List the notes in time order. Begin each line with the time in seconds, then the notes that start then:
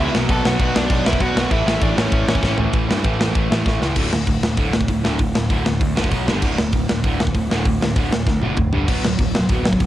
Already playing: E2 B2 E3 E4 E5
0.00 E2 B2 E3
0.13 B1 B2 F#3 B3, snare
0.29 B1 B2 F#3 B3 A4 A5, kick, crash
0.44 B1 B2 F#3 B3 F#4 F#5, snare
0.59 B1 B2 F#3 B3, kick, crash
0.75 B1 B2 F#3 B3 D4 D5, snare
0.89 B1 B2 F#3 B3 D4 D5, kick, crash
1.05 B1 B2 F#3 B3 E4 E5, snare
1.13 kick
1.20 B1 B2 F#3 B3 F#4 F#5, kick, crash
1.36 B1 B2 F#3 B3, snare
1.51 A1 A2 E3 A3 E4 E5, kick, crash
1.66 A1 A2 E3 A3, snare
1.82 A1 A2 E3 A3 D4 D5, kick, crash
1.97 A1 A2 E3 A3 C#4 C#5, snare
2.12 A1 A2 E3 A3, kick, crash
2.27 A1 A2 E3 A3 C#4 C#5, snare
2.35 kick
2.43 A1 A2 E3 A3, kick, snare
2.58 A1 A2 E3 A3, floor tom
2.73 A1 A2 E3 A3, kick, ride
2.89 G2 A2 E3 A3, snare
3.04 A1 A2 E3 A3, kick, ride
3.20 A2 E3 A3, snare
3.35 A1 A2 E3 A3, kick, ride
3.50 A1 A2 E3 A3, snare
3.66 A1 A2 E3 A3, kick, snare
3.81 C#2 A2 E3 A3, snare
3.96 D1 D2 A2 D3, kick, crash
4.11 D1 D2 A2, snare
4.27 D1 D2 A2, kick, open hi-hat
4.41 D1 D2 A2, snare
4.57 D1 D2 A2 D3, kick, open hi-hat
4.72 D1 D2 A2, snare
4.81 kick
4.88 D1 D2 A2, kick, open hi-hat
5.04 D1 D2 A2 D3, snare
5.19 D1 D2 A2, kick, open hi-hat
5.35 D1 D2 A2, snare
5.50 D1 D2 A2 D3, kick, open hi-hat
5.66 D1 D2 A2, snare
5.81 D2 A2, kick, open hi-hat
5.97 F#1 D2 A2 D3, snare
6.04 kick
6.12 B1 B2 F#3 B3, kick, open hi-hat
6.28 G1 G2 D3 G3, snare
6.42 D1 D2 A2 D3, kick, crash
6.58 D1 D2 A2, snare
6.73 D1 D2 A2, kick, open hi-hat
6.89 D1 D2 A2, snare
7.04 D1 D2 A2 D3, kick, open hi-hat
7.20 D1 D2 A2, snare
7.27 kick
7.34 D1 D2 A2, kick, open hi-hat
7.50 D1 D2 A2 D3, snare
7.65 D1 D2 A2, kick, open hi-hat
7.82 D1 D2 A2, snare
7.96 D1 D2 A2 D3, kick, open hi-hat
8.12 D1 D2 A2, snare
8.27 D2 A2, kick, snare
8.42 F#1 D2 A2 D3, high tom
8.57 D1 D2 A2, kick, mid tom
8.73 G1 G2 D3 G3, floor tom
8.88 D1 B2 F#3 B3, kick, crash
9.04 D1 B2 F#3, snare
9.19 D1 B2 F#3, kick, open hi-hat
9.35 D1 B2 F#3, snare
9.49 D1 B2 F#3 B3, kick, open hi-hat
9.65 D1 B2 F#3, snare
9.73 kick
9.80 D1 B2 F#3, kick, open hi-hat